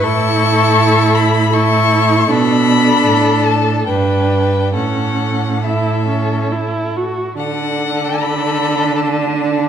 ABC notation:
X:1
M:3/4
L:1/16
Q:1/4=76
K:D
V:1 name="Violin"
c'6 b2 c'4 | b6 a2 g4 | f4 e6 z2 | f4 b4 a4 |]
V:2 name="Violin"
A8 A4 | A8 B4 | A4 A6- A z | A12 |]
V:3 name="Viola"
E8 E4 | D8 D4 | C4 E2 C2 E2 F2 | D12 |]
V:4 name="Cello" clef=bass
A,,12 | B,,4 A,,4 G,,4 | A,,8- A,,3 z | D,12 |]